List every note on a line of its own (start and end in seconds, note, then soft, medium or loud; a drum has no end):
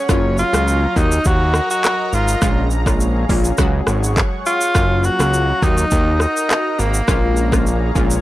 0.00 0.35 C#4 medium
0.00 0.93 C#5 medium
0.09 0.44 F#1 loud
0.09 0.50 F#3 medium
0.09 2.40 F#3 medium
0.09 0.50 A#3 medium
0.09 0.50 C#4 medium
0.09 0.50 F4 loud
0.09 0.96 F5 medium
0.09 3.55 A#5 medium
0.09 kick loud
0.09 cross-stick loud
0.09 shaker medium
0.38 0.99 F4 loud
0.38 shaker medium
0.53 0.87 C#2 medium
0.53 0.75 F#3 medium
0.53 0.75 A#3 medium
0.53 0.75 C#4 medium
0.53 0.75 F4 medium
0.53 cross-stick medium
0.53 shaker medium
0.68 shaker medium
0.96 1.19 D#2 loud
0.96 1.18 F#3 medium
0.96 1.19 A#3 medium
0.96 1.19 D#4 medium
0.96 1.28 D#4 loud
0.96 1.19 F#4 medium
0.96 2.41 A#4 medium
0.96 2.41 D#5 medium
0.96 kick medium
0.96 shaker medium
1.12 shaker medium
1.25 1.60 D#2 loud
1.25 1.70 F#4 loud
1.25 kick medium
1.25 shaker medium
1.54 cross-stick loud
1.54 shaker medium
1.71 2.16 F#4 loud
1.71 shaker medium
1.84 cross-stick medium
1.84 clap medium
1.84 shaker medium
2.13 2.36 G#1 loud
2.13 2.72 F4 loud
2.13 shaker medium
2.28 shaker medium
2.42 3.26 A#1 loud
2.42 2.83 G#3 medium
2.42 2.83 A#3 medium
2.42 2.83 C#4 medium
2.42 2.83 F4 loud
2.42 4.73 G#4 medium
2.42 3.58 C#5 medium
2.42 3.57 F5 medium
2.42 kick loud
2.42 cross-stick loud
2.42 shaker medium
2.71 shaker medium
2.86 3.08 G#3 medium
2.86 3.08 A#3 medium
2.86 3.08 C#4 medium
2.86 3.08 F4 medium
2.86 kick loud
2.86 cross-stick medium
2.86 shaker medium
3.00 shaker medium
3.29 3.52 A#1 loud
3.29 3.52 G#3 medium
3.29 3.52 A#3 medium
3.29 3.52 C#4 medium
3.29 3.52 F4 medium
3.29 kick medium
3.29 open hi-hat medium
3.29 shaker medium
3.44 shaker medium
3.58 3.81 C#2 loud
3.58 4.66 F#3 loud
3.58 4.66 G#3 medium
3.58 4.66 C#4 medium
3.58 4.66 F#4 loud
3.58 5.61 C#5 medium
3.58 4.74 F#5 medium
3.58 4.74 C#6 medium
3.58 kick medium
3.58 cross-stick loud
3.58 shaker medium
3.87 4.22 G#1 loud
3.87 cross-stick loud
3.87 shaker medium
4.04 shaker medium
4.17 kick loud
4.17 cross-stick medium
4.17 clap medium
4.17 shaker medium
4.46 5.06 F4 loud
4.46 shaker medium
4.61 shaker medium
4.75 5.10 F#1 loud
4.75 5.16 F#3 loud
4.75 5.62 F#3 medium
4.75 5.16 A#3 medium
4.75 5.16 C#4 medium
4.75 5.16 F4 loud
4.75 5.62 F5 medium
4.75 8.21 A#5 medium
4.75 kick loud
4.75 cross-stick loud
4.75 shaker medium
5.04 5.65 F#4 loud
5.04 shaker medium
5.19 5.53 C#2 medium
5.19 5.41 F#3 medium
5.19 5.41 A#3 medium
5.19 5.41 C#4 medium
5.19 5.41 F4 medium
5.19 cross-stick loud
5.19 shaker medium
5.34 shaker medium
5.62 5.85 D#2 loud
5.62 5.85 F#3 medium
5.62 5.85 A#3 medium
5.62 5.85 D#4 medium
5.62 6.21 D#4 loud
5.62 7.07 F#4 medium
5.62 5.85 F#4 medium
5.62 7.07 A#4 medium
5.62 7.07 D#5 medium
5.62 kick medium
5.62 shaker medium
5.78 shaker medium
5.91 6.26 D#2 loud
5.91 kick medium
5.91 shaker medium
6.20 6.82 D#4 loud
6.20 cross-stick medium
6.20 shaker medium
6.37 shaker medium
6.50 cross-stick medium
6.50 clap medium
6.50 shaker medium
6.79 7.02 G#1 loud
6.79 7.96 A#3 medium
6.79 shaker medium
6.94 shaker medium
7.08 7.92 A#1 loud
7.08 7.49 G#3 medium
7.08 7.49 A#3 medium
7.08 7.49 C#4 medium
7.08 7.49 F4 loud
7.08 8.21 G#4 medium
7.08 8.21 C#5 medium
7.08 8.21 F5 medium
7.08 kick loud
7.08 cross-stick loud
7.08 shaker medium
7.37 shaker medium
7.52 7.74 G#3 medium
7.52 7.74 A#3 medium
7.52 7.74 C#4 medium
7.52 7.74 F4 medium
7.52 kick medium
7.52 cross-stick medium
7.52 shaker medium
7.67 shaker medium
7.95 8.18 A#1 loud
7.95 8.18 G#3 medium
7.95 8.18 A#3 medium
7.95 8.18 C#4 medium
7.95 8.18 F4 medium
7.95 kick medium
7.95 shaker medium
8.11 shaker medium